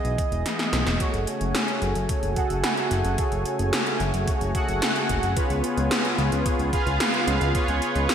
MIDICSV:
0, 0, Header, 1, 5, 480
1, 0, Start_track
1, 0, Key_signature, 3, "minor"
1, 0, Tempo, 545455
1, 883, Time_signature, 4, 2, 24, 8
1, 7169, End_track
2, 0, Start_track
2, 0, Title_t, "Analog polysynth"
2, 0, Program_c, 0, 90
2, 879, Note_on_c, 0, 66, 76
2, 879, Note_on_c, 0, 73, 84
2, 880, Note_on_c, 0, 68, 70
2, 880, Note_on_c, 0, 69, 70
2, 2052, Note_off_c, 0, 66, 0
2, 2052, Note_off_c, 0, 68, 0
2, 2052, Note_off_c, 0, 69, 0
2, 2052, Note_off_c, 0, 73, 0
2, 2078, Note_on_c, 0, 78, 99
2, 2079, Note_on_c, 0, 68, 81
2, 2079, Note_on_c, 0, 69, 83
2, 2080, Note_on_c, 0, 66, 87
2, 2772, Note_off_c, 0, 66, 0
2, 2772, Note_off_c, 0, 68, 0
2, 2772, Note_off_c, 0, 69, 0
2, 2772, Note_off_c, 0, 78, 0
2, 2801, Note_on_c, 0, 66, 75
2, 2801, Note_on_c, 0, 68, 68
2, 2802, Note_on_c, 0, 69, 70
2, 2802, Note_on_c, 0, 73, 82
2, 3973, Note_off_c, 0, 66, 0
2, 3973, Note_off_c, 0, 68, 0
2, 3973, Note_off_c, 0, 69, 0
2, 3973, Note_off_c, 0, 73, 0
2, 4002, Note_on_c, 0, 66, 90
2, 4002, Note_on_c, 0, 68, 83
2, 4002, Note_on_c, 0, 69, 83
2, 4002, Note_on_c, 0, 78, 102
2, 4693, Note_off_c, 0, 66, 0
2, 4693, Note_off_c, 0, 69, 0
2, 4693, Note_off_c, 0, 78, 0
2, 4694, Note_off_c, 0, 68, 0
2, 4721, Note_on_c, 0, 65, 79
2, 4721, Note_on_c, 0, 68, 70
2, 4721, Note_on_c, 0, 71, 70
2, 4721, Note_on_c, 0, 73, 85
2, 5893, Note_off_c, 0, 65, 0
2, 5893, Note_off_c, 0, 68, 0
2, 5893, Note_off_c, 0, 71, 0
2, 5893, Note_off_c, 0, 73, 0
2, 5921, Note_on_c, 0, 65, 93
2, 5921, Note_on_c, 0, 71, 82
2, 5921, Note_on_c, 0, 77, 98
2, 5922, Note_on_c, 0, 68, 83
2, 6613, Note_off_c, 0, 65, 0
2, 6613, Note_off_c, 0, 71, 0
2, 6613, Note_off_c, 0, 77, 0
2, 6614, Note_off_c, 0, 68, 0
2, 6641, Note_on_c, 0, 68, 73
2, 6641, Note_on_c, 0, 71, 69
2, 6642, Note_on_c, 0, 65, 77
2, 6642, Note_on_c, 0, 73, 85
2, 7169, Note_off_c, 0, 65, 0
2, 7169, Note_off_c, 0, 68, 0
2, 7169, Note_off_c, 0, 71, 0
2, 7169, Note_off_c, 0, 73, 0
2, 7169, End_track
3, 0, Start_track
3, 0, Title_t, "Analog synth pad"
3, 0, Program_c, 1, 89
3, 0, Note_on_c, 1, 52, 79
3, 0, Note_on_c, 1, 59, 72
3, 0, Note_on_c, 1, 68, 72
3, 0, Note_on_c, 1, 75, 85
3, 848, Note_off_c, 1, 59, 0
3, 864, Note_off_c, 1, 52, 0
3, 864, Note_off_c, 1, 68, 0
3, 864, Note_off_c, 1, 75, 0
3, 881, Note_on_c, 1, 57, 72
3, 881, Note_on_c, 1, 66, 69
3, 882, Note_on_c, 1, 49, 76
3, 882, Note_on_c, 1, 80, 87
3, 4686, Note_off_c, 1, 57, 0
3, 4686, Note_off_c, 1, 66, 0
3, 4721, Note_on_c, 1, 59, 71
3, 4721, Note_on_c, 1, 65, 70
3, 7169, Note_off_c, 1, 49, 0
3, 7169, Note_off_c, 1, 59, 0
3, 7169, Note_off_c, 1, 65, 0
3, 7169, Note_off_c, 1, 80, 0
3, 7169, End_track
4, 0, Start_track
4, 0, Title_t, "Analog synth bass"
4, 0, Program_c, 2, 38
4, 41, Note_on_c, 2, 35, 74
4, 148, Note_off_c, 2, 35, 0
4, 280, Note_on_c, 2, 28, 81
4, 388, Note_off_c, 2, 28, 0
4, 640, Note_on_c, 2, 35, 94
4, 748, Note_off_c, 2, 35, 0
4, 760, Note_on_c, 2, 28, 81
4, 867, Note_off_c, 2, 28, 0
4, 1001, Note_on_c, 2, 30, 77
4, 1108, Note_off_c, 2, 30, 0
4, 1240, Note_on_c, 2, 30, 81
4, 1347, Note_off_c, 2, 30, 0
4, 1601, Note_on_c, 2, 30, 91
4, 1708, Note_off_c, 2, 30, 0
4, 1723, Note_on_c, 2, 30, 80
4, 1829, Note_off_c, 2, 30, 0
4, 1963, Note_on_c, 2, 30, 75
4, 2069, Note_off_c, 2, 30, 0
4, 2203, Note_on_c, 2, 30, 80
4, 2309, Note_off_c, 2, 30, 0
4, 2561, Note_on_c, 2, 30, 95
4, 2668, Note_off_c, 2, 30, 0
4, 2682, Note_on_c, 2, 30, 79
4, 2788, Note_off_c, 2, 30, 0
4, 2923, Note_on_c, 2, 30, 76
4, 3029, Note_off_c, 2, 30, 0
4, 3161, Note_on_c, 2, 30, 78
4, 3268, Note_off_c, 2, 30, 0
4, 3522, Note_on_c, 2, 30, 90
4, 3629, Note_off_c, 2, 30, 0
4, 3643, Note_on_c, 2, 30, 81
4, 3749, Note_off_c, 2, 30, 0
4, 3882, Note_on_c, 2, 30, 77
4, 3988, Note_off_c, 2, 30, 0
4, 4123, Note_on_c, 2, 30, 78
4, 4229, Note_off_c, 2, 30, 0
4, 4483, Note_on_c, 2, 30, 93
4, 4589, Note_off_c, 2, 30, 0
4, 4602, Note_on_c, 2, 30, 78
4, 4709, Note_off_c, 2, 30, 0
4, 4840, Note_on_c, 2, 37, 77
4, 4948, Note_off_c, 2, 37, 0
4, 5081, Note_on_c, 2, 37, 84
4, 5188, Note_off_c, 2, 37, 0
4, 5441, Note_on_c, 2, 37, 94
4, 5548, Note_off_c, 2, 37, 0
4, 5562, Note_on_c, 2, 37, 81
4, 5669, Note_off_c, 2, 37, 0
4, 5802, Note_on_c, 2, 37, 75
4, 5908, Note_off_c, 2, 37, 0
4, 6041, Note_on_c, 2, 37, 79
4, 6148, Note_off_c, 2, 37, 0
4, 6400, Note_on_c, 2, 37, 97
4, 6507, Note_off_c, 2, 37, 0
4, 6522, Note_on_c, 2, 37, 80
4, 6629, Note_off_c, 2, 37, 0
4, 6761, Note_on_c, 2, 37, 78
4, 6868, Note_off_c, 2, 37, 0
4, 7002, Note_on_c, 2, 37, 83
4, 7108, Note_off_c, 2, 37, 0
4, 7169, End_track
5, 0, Start_track
5, 0, Title_t, "Drums"
5, 43, Note_on_c, 9, 42, 39
5, 131, Note_off_c, 9, 42, 0
5, 162, Note_on_c, 9, 36, 96
5, 163, Note_on_c, 9, 42, 63
5, 250, Note_off_c, 9, 36, 0
5, 251, Note_off_c, 9, 42, 0
5, 282, Note_on_c, 9, 42, 39
5, 370, Note_off_c, 9, 42, 0
5, 403, Note_on_c, 9, 38, 60
5, 403, Note_on_c, 9, 42, 94
5, 491, Note_off_c, 9, 38, 0
5, 491, Note_off_c, 9, 42, 0
5, 522, Note_on_c, 9, 38, 59
5, 522, Note_on_c, 9, 42, 39
5, 610, Note_off_c, 9, 38, 0
5, 610, Note_off_c, 9, 42, 0
5, 642, Note_on_c, 9, 38, 85
5, 642, Note_on_c, 9, 42, 68
5, 730, Note_off_c, 9, 38, 0
5, 730, Note_off_c, 9, 42, 0
5, 762, Note_on_c, 9, 38, 82
5, 762, Note_on_c, 9, 42, 39
5, 850, Note_off_c, 9, 38, 0
5, 850, Note_off_c, 9, 42, 0
5, 881, Note_on_c, 9, 36, 111
5, 881, Note_on_c, 9, 42, 90
5, 969, Note_off_c, 9, 36, 0
5, 969, Note_off_c, 9, 42, 0
5, 1001, Note_on_c, 9, 42, 40
5, 1089, Note_off_c, 9, 42, 0
5, 1121, Note_on_c, 9, 42, 66
5, 1209, Note_off_c, 9, 42, 0
5, 1239, Note_on_c, 9, 42, 40
5, 1327, Note_off_c, 9, 42, 0
5, 1361, Note_on_c, 9, 38, 110
5, 1361, Note_on_c, 9, 42, 90
5, 1449, Note_off_c, 9, 38, 0
5, 1449, Note_off_c, 9, 42, 0
5, 1480, Note_on_c, 9, 42, 42
5, 1568, Note_off_c, 9, 42, 0
5, 1600, Note_on_c, 9, 42, 38
5, 1688, Note_off_c, 9, 42, 0
5, 1720, Note_on_c, 9, 42, 39
5, 1808, Note_off_c, 9, 42, 0
5, 1840, Note_on_c, 9, 42, 93
5, 1842, Note_on_c, 9, 36, 111
5, 1928, Note_off_c, 9, 42, 0
5, 1930, Note_off_c, 9, 36, 0
5, 1961, Note_on_c, 9, 42, 40
5, 2049, Note_off_c, 9, 42, 0
5, 2080, Note_on_c, 9, 42, 67
5, 2082, Note_on_c, 9, 36, 96
5, 2168, Note_off_c, 9, 42, 0
5, 2170, Note_off_c, 9, 36, 0
5, 2202, Note_on_c, 9, 42, 40
5, 2290, Note_off_c, 9, 42, 0
5, 2320, Note_on_c, 9, 38, 115
5, 2320, Note_on_c, 9, 42, 91
5, 2408, Note_off_c, 9, 38, 0
5, 2408, Note_off_c, 9, 42, 0
5, 2440, Note_on_c, 9, 42, 40
5, 2528, Note_off_c, 9, 42, 0
5, 2561, Note_on_c, 9, 42, 69
5, 2649, Note_off_c, 9, 42, 0
5, 2680, Note_on_c, 9, 42, 41
5, 2768, Note_off_c, 9, 42, 0
5, 2800, Note_on_c, 9, 42, 92
5, 2802, Note_on_c, 9, 36, 118
5, 2888, Note_off_c, 9, 42, 0
5, 2890, Note_off_c, 9, 36, 0
5, 2920, Note_on_c, 9, 42, 40
5, 3008, Note_off_c, 9, 42, 0
5, 3040, Note_on_c, 9, 42, 67
5, 3128, Note_off_c, 9, 42, 0
5, 3161, Note_on_c, 9, 42, 38
5, 3249, Note_off_c, 9, 42, 0
5, 3281, Note_on_c, 9, 38, 116
5, 3281, Note_on_c, 9, 42, 91
5, 3369, Note_off_c, 9, 38, 0
5, 3369, Note_off_c, 9, 42, 0
5, 3401, Note_on_c, 9, 42, 41
5, 3489, Note_off_c, 9, 42, 0
5, 3521, Note_on_c, 9, 42, 37
5, 3609, Note_off_c, 9, 42, 0
5, 3642, Note_on_c, 9, 42, 42
5, 3730, Note_off_c, 9, 42, 0
5, 3762, Note_on_c, 9, 42, 93
5, 3763, Note_on_c, 9, 36, 116
5, 3850, Note_off_c, 9, 42, 0
5, 3851, Note_off_c, 9, 36, 0
5, 3882, Note_on_c, 9, 42, 41
5, 3970, Note_off_c, 9, 42, 0
5, 4002, Note_on_c, 9, 36, 103
5, 4003, Note_on_c, 9, 42, 67
5, 4090, Note_off_c, 9, 36, 0
5, 4091, Note_off_c, 9, 42, 0
5, 4123, Note_on_c, 9, 42, 42
5, 4211, Note_off_c, 9, 42, 0
5, 4242, Note_on_c, 9, 38, 122
5, 4242, Note_on_c, 9, 42, 96
5, 4330, Note_off_c, 9, 38, 0
5, 4330, Note_off_c, 9, 42, 0
5, 4363, Note_on_c, 9, 42, 41
5, 4451, Note_off_c, 9, 42, 0
5, 4482, Note_on_c, 9, 42, 68
5, 4483, Note_on_c, 9, 36, 60
5, 4570, Note_off_c, 9, 42, 0
5, 4571, Note_off_c, 9, 36, 0
5, 4602, Note_on_c, 9, 42, 40
5, 4690, Note_off_c, 9, 42, 0
5, 4722, Note_on_c, 9, 42, 92
5, 4723, Note_on_c, 9, 36, 123
5, 4810, Note_off_c, 9, 42, 0
5, 4811, Note_off_c, 9, 36, 0
5, 4842, Note_on_c, 9, 42, 40
5, 4930, Note_off_c, 9, 42, 0
5, 4961, Note_on_c, 9, 42, 68
5, 5049, Note_off_c, 9, 42, 0
5, 5082, Note_on_c, 9, 42, 39
5, 5170, Note_off_c, 9, 42, 0
5, 5201, Note_on_c, 9, 38, 120
5, 5201, Note_on_c, 9, 42, 89
5, 5289, Note_off_c, 9, 38, 0
5, 5289, Note_off_c, 9, 42, 0
5, 5322, Note_on_c, 9, 42, 41
5, 5410, Note_off_c, 9, 42, 0
5, 5443, Note_on_c, 9, 42, 36
5, 5531, Note_off_c, 9, 42, 0
5, 5563, Note_on_c, 9, 42, 40
5, 5651, Note_off_c, 9, 42, 0
5, 5682, Note_on_c, 9, 42, 94
5, 5683, Note_on_c, 9, 36, 122
5, 5770, Note_off_c, 9, 42, 0
5, 5771, Note_off_c, 9, 36, 0
5, 5803, Note_on_c, 9, 42, 40
5, 5891, Note_off_c, 9, 42, 0
5, 5922, Note_on_c, 9, 42, 68
5, 5923, Note_on_c, 9, 36, 108
5, 6010, Note_off_c, 9, 42, 0
5, 6011, Note_off_c, 9, 36, 0
5, 6043, Note_on_c, 9, 42, 41
5, 6131, Note_off_c, 9, 42, 0
5, 6162, Note_on_c, 9, 38, 125
5, 6162, Note_on_c, 9, 42, 95
5, 6250, Note_off_c, 9, 38, 0
5, 6250, Note_off_c, 9, 42, 0
5, 6282, Note_on_c, 9, 42, 40
5, 6370, Note_off_c, 9, 42, 0
5, 6403, Note_on_c, 9, 42, 68
5, 6491, Note_off_c, 9, 42, 0
5, 6522, Note_on_c, 9, 42, 41
5, 6610, Note_off_c, 9, 42, 0
5, 6642, Note_on_c, 9, 36, 121
5, 6642, Note_on_c, 9, 42, 87
5, 6730, Note_off_c, 9, 36, 0
5, 6730, Note_off_c, 9, 42, 0
5, 6761, Note_on_c, 9, 42, 40
5, 6849, Note_off_c, 9, 42, 0
5, 6881, Note_on_c, 9, 42, 66
5, 6969, Note_off_c, 9, 42, 0
5, 7001, Note_on_c, 9, 42, 38
5, 7089, Note_off_c, 9, 42, 0
5, 7121, Note_on_c, 9, 38, 121
5, 7121, Note_on_c, 9, 42, 88
5, 7169, Note_off_c, 9, 38, 0
5, 7169, Note_off_c, 9, 42, 0
5, 7169, End_track
0, 0, End_of_file